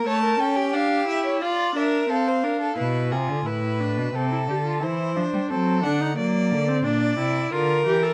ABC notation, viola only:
X:1
M:4/4
L:1/16
Q:1/4=88
K:Dm
V:1 name="Viola"
A,2 ^C2 D2 E2 F2 D2 =C2 D2 | E2 F2 E2 D2 C E G F E2 D2 | C2 D _E B,3 C D2 =E2 F2 G A |]